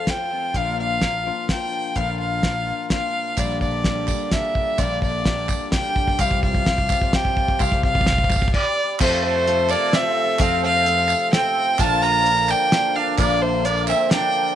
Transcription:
Already playing: steel-string acoustic guitar F2 F3 A3 A4, fiddle F5
0.06 twelve-string acoustic guitar F3 C4 F4 A4, steel-string acoustic guitar C4, fiddle G5, kick, snare, closed hi-hat
0.31 twelve-string acoustic guitar C4 F4 A4
0.54 picked electric bass A#1, twelve-string acoustic guitar A#2 D3 F3 A#3 D4 A#4, steel-string acoustic guitar A#2 F4, fiddle F5, kick, closed hi-hat
0.80 steel-string acoustic guitar D4, fiddle F5
1.02 twelve-string acoustic guitar F3 A#3 D4 A#4, steel-string acoustic guitar A#3, kick, snare, closed hi-hat
1.25 steel-string acoustic guitar F3 F4, twelve-string acoustic guitar F3 A#3 D4 A#4
1.49 twelve-string acoustic guitar F3 A#3 D4 A#4, steel-string acoustic guitar D4, fiddle G5, kick, snare, closed hi-hat
1.96 picked electric bass A#1, twelve-string acoustic guitar A#2 D3 F3 A#3 D4 A#4, steel-string acoustic guitar A#2 F4, fiddle F5, kick, closed hi-hat
2.20 steel-string acoustic guitar D4, fiddle F5
2.43 twelve-string acoustic guitar F3 A#3 D4 A#4, steel-string acoustic guitar A#3, kick, snare, closed hi-hat
2.66 steel-string acoustic guitar F3 F4
2.90 twelve-string acoustic guitar F3 A#3 D4 A#4, steel-string acoustic guitar D4, fiddle F5, kick, snare, closed hi-hat
3.36 picked electric bass A#1, twelve-string acoustic guitar A#2 D3 G3 A#3 D4 G4, harmonium A#2 D3 G3 D4 G4, fiddle D5, kick, clap, closed hi-hat, tambourine
3.50 clap
3.61 fiddle D5, kick, tambourine
3.84 twelve-string acoustic guitar G3 A#3 D4 G4, kick, snare, closed hi-hat
3.97 clap
4.08 twelve-string acoustic guitar G3 A#3 D4 G4, kick, clap, tambourine
4.32 twelve-string acoustic guitar G3 A#3 D4 G4, fiddle E5, kick, snare, closed hi-hat, tambourine
4.44 clap
4.55 kick
4.78 picked electric bass A#1, twelve-string acoustic guitar A#2 D3 G3 A#3 D4 G4, fiddle D5, kick, clap, closed hi-hat, tambourine
4.91 clap
5.02 fiddle D5, kick, tambourine
5.25 twelve-string acoustic guitar G3 A#3 D4 G4, kick, snare, closed hi-hat
5.49 kick, clap, tambourine
5.72 twelve-string acoustic guitar G3 A#3 D4 G4, fiddle G5, kick, snare, closed hi-hat, tambourine
5.84 clap
5.96 kick
6.08 kick
6.19 picked electric bass C2, harmonium C3 F3 G3 F4, twelve-string acoustic guitar C3 F3 C4 F4 G4, fiddle F5, kick, clap, closed hi-hat, tambourine
6.31 kick, clap
6.43 fiddle F5, kick, tambourine
6.55 kick
6.65 twelve-string acoustic guitar F3 C4 F4 G4, kick, snare, closed hi-hat
6.78 kick, clap
6.89 twelve-string acoustic guitar C4 F4 G4, kick, clap, tambourine
7.01 kick
7.13 twelve-string acoustic guitar F3 C4 F4 G4, fiddle G5, kick, snare, closed hi-hat, tambourine
7.25 kick, clap
7.37 kick
7.48 kick
7.59 picked electric bass C2, twelve-string acoustic guitar C3 F3 C4 F4 G4, fiddle F5, kick, clap, tambourine
7.72 kick
7.83 fiddle F5, kick
7.95 kick
8.01 kick
8.06 twelve-string acoustic guitar F3 C4 F4 G4, kick, snare
8.12 kick
8.18 kick, clap
8.24 kick
8.30 kick, clap, tambourine
8.36 kick
8.42 kick
8.48 kick
8.54 sitar G3, fiddle D5, kick, crash
8.99 picked electric bass F2, harmonium C3 F3 A3 F4 A4, twelve-string acoustic guitar F3 C4 F4 A4, sitar A3, fiddle C5, kick, clap, crash, tambourine
9.24 sitar A3, fiddle C5, clap
9.46 twelve-string acoustic guitar F3 C4 F4 A4, clap, closed hi-hat
9.59 tambourine
9.69 sitar A#3, twelve-string acoustic guitar C4 F4 A4, fiddle D5, clap, tambourine
9.92 twelve-string acoustic guitar F3 C4 F4 A4, sitar C4, fiddle E5, snare, closed hi-hat, tambourine
10.16 clap
10.39 picked electric bass F2, twelve-string acoustic guitar F3 C4 F4 A4, sitar C4, fiddle F5, kick, clap, closed hi-hat, tambourine
10.63 sitar C4, fiddle F5
10.86 twelve-string acoustic guitar F3 C4 F4 A4, clap, closed hi-hat
10.98 tambourine
11.09 clap, tambourine
11.32 twelve-string acoustic guitar F3 C4 F4 A4, sitar C4, fiddle G5, snare, closed hi-hat
11.56 clap
11.78 picked electric bass A#1, twelve-string acoustic guitar A#2 D3 F3 A#3 D4 A#4, harmonium D3 F3 A#3 A#4, sitar F4, fiddle A5, kick, clap, closed hi-hat, tambourine
12.02 sitar F4, fiddle A#5, clap
12.26 twelve-string acoustic guitar F3 A#3 D4 A#4, clap, closed hi-hat
12.38 tambourine
12.49 sitar D4, fiddle G5, clap, tambourine
12.72 twelve-string acoustic guitar F3 A#3 D4 A#4, snare, closed hi-hat, tambourine
12.96 sitar D4, fiddle F5, clap
13.18 picked electric bass A#1, twelve-string acoustic guitar A#2 D3 F3 A#3 D4 A#4, sitar A#3, fiddle D5, kick, clap, closed hi-hat, tambourine
13.31 clap, tambourine
13.42 sitar A3, fiddle C5
13.64 twelve-string acoustic guitar F3 A#3 D4 A#4, sitar A#3, fiddle D5, closed hi-hat
13.77 clap, tambourine
13.87 twelve-string acoustic guitar F3 A#3 D4 A#4, sitar C4, fiddle E5, clap, tambourine
14.10 twelve-string acoustic guitar F3 A#3 D4 A#4, sitar D4, fiddle G5, snare, clap, closed hi-hat

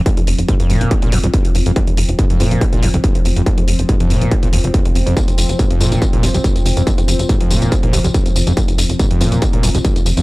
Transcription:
Already playing: synth drone F3 C4
0.06 acid bass F2, kick, closed hi-hat
0.17 analog synth bass F2, closed hi-hat
0.27 analog synth bass F1, open hi-hat
0.39 analog synth bass F1, closed hi-hat
0.48 acid bass G#2, kick, closed hi-hat
0.60 analog synth bass F1, acid bass F2, closed hi-hat
0.70 analog synth bass F1, acid bass A#2, open hi-hat
0.81 analog synth bass F1, closed hi-hat
0.91 acid bass C3, kick, closed hi-hat
1.02 analog synth bass C2, acid bass A#2, closed hi-hat
1.12 analog synth bass C2, acid bass F2, open hi-hat
1.24 analog synth bass C2, acid bass F2, closed hi-hat
1.34 acid bass F2, kick, closed hi-hat
1.45 analog synth bass F1, closed hi-hat
1.55 analog synth bass F1, open hi-hat
1.66 analog synth bass F1, acid bass F2, closed hi-hat
1.76 acid bass F2, kick, closed hi-hat
1.87 analog synth bass F1, closed hi-hat
1.97 analog synth bass F1, open hi-hat
2.09 analog synth bass F1, closed hi-hat
2.19 acid bass G#2, kick, closed hi-hat
2.30 analog synth bass F1, acid bass F2, closed hi-hat
2.40 analog synth bass F2, acid bass A#2, open hi-hat
2.51 analog synth bass F1, closed hi-hat
2.61 acid bass C3, kick, closed hi-hat
2.73 analog synth bass C2, acid bass A#2, closed hi-hat
2.83 analog synth bass C2, acid bass F2, open hi-hat
2.94 analog synth bass C2, acid bass F2, closed hi-hat
3.04 acid bass F2, kick, closed hi-hat
3.15 analog synth bass F1, closed hi-hat
3.25 analog synth bass F1, open hi-hat
3.36 analog synth bass F1, acid bass F2, closed hi-hat
3.46 acid bass F2, kick, closed hi-hat
3.58 analog synth bass F2, closed hi-hat
3.68 analog synth bass F1, open hi-hat
3.79 analog synth bass F1, closed hi-hat
3.89 acid bass G#2, kick, closed hi-hat
4.00 analog synth bass F1, acid bass F2, closed hi-hat
4.10 analog synth bass F1, acid bass A#2, open hi-hat
4.22 analog synth bass F1, closed hi-hat
4.31 acid bass C3, kick, closed hi-hat
4.43 analog synth bass C2, acid bass A#2, closed hi-hat
4.53 analog synth bass F1, acid bass D#2, open hi-hat
4.64 acid bass F1, analog synth bass F1, closed hi-hat
4.74 acid bass F2, kick, closed hi-hat
4.85 analog synth bass F2, closed hi-hat
4.95 analog synth bass F1, open hi-hat
5.06 analog synth bass F1, acid bass F2, closed hi-hat
5.17 kick, closed hi-hat, tambourine
5.28 analog synth bass F1, closed hi-hat, tambourine
5.38 analog synth bass F1, open hi-hat, tambourine
5.49 analog synth bass F1, closed hi-hat, tambourine
5.59 acid bass G#2, kick, closed hi-hat, tambourine
5.70 analog synth bass F1, acid bass F2, closed hi-hat
5.80 analog synth bass F2, acid bass A#2, open hi-hat, tambourine
5.92 analog synth bass F1, closed hi-hat, tambourine
6.02 acid bass C3, kick, closed hi-hat, tambourine
6.13 analog synth bass C2, acid bass A#2, closed hi-hat
6.23 analog synth bass C2, acid bass F2, open hi-hat, tambourine
6.34 analog synth bass C2, acid bass F2, closed hi-hat, tambourine
6.44 acid bass F2, kick, closed hi-hat, tambourine
6.55 analog synth bass F1, closed hi-hat, tambourine
6.65 analog synth bass F1, open hi-hat, tambourine
6.77 analog synth bass F1, acid bass F2, closed hi-hat, tambourine
6.87 acid bass F2, kick, closed hi-hat, tambourine
6.98 analog synth bass F2, closed hi-hat, tambourine
7.08 analog synth bass F1, open hi-hat, tambourine
7.19 analog synth bass F1, closed hi-hat, tambourine
7.29 acid bass G#2, kick, closed hi-hat, tambourine
7.41 analog synth bass F1, acid bass F2, closed hi-hat
7.51 analog synth bass F1, acid bass A#2, open hi-hat, tambourine
7.62 analog synth bass F1, closed hi-hat, tambourine
7.72 acid bass C3, kick, closed hi-hat, tambourine
7.83 analog synth bass C2, acid bass A#2, closed hi-hat
7.93 analog synth bass C2, acid bass F2, open hi-hat, tambourine
8.04 analog synth bass C2, acid bass F2, closed hi-hat, tambourine
8.14 acid bass F2, kick, closed hi-hat, tambourine
8.26 analog synth bass F1, closed hi-hat, tambourine
8.36 analog synth bass F1, open hi-hat, tambourine
8.47 analog synth bass F1, acid bass F2, closed hi-hat, tambourine
8.57 acid bass F2, kick, closed hi-hat, tambourine
8.68 analog synth bass F1, closed hi-hat, tambourine
8.78 analog synth bass F1, open hi-hat, tambourine
8.89 analog synth bass F1, closed hi-hat, tambourine
8.99 acid bass G#2, kick, closed hi-hat, tambourine
9.11 analog synth bass F1, acid bass F2, closed hi-hat
9.21 analog synth bass F2, acid bass A#2, open hi-hat, tambourine
9.32 analog synth bass F1, closed hi-hat, tambourine
9.42 acid bass C3, kick, closed hi-hat, tambourine
9.53 analog synth bass C2, acid bass A#2, closed hi-hat
9.63 analog synth bass C2, acid bass F2, open hi-hat, tambourine
9.75 analog synth bass C2, acid bass F2, closed hi-hat, tambourine
9.85 acid bass F2, kick, closed hi-hat, tambourine
9.96 analog synth bass F1, closed hi-hat, tambourine
10.06 analog synth bass F1, open hi-hat, tambourine
10.17 analog synth bass F1, acid bass F2, closed hi-hat, tambourine

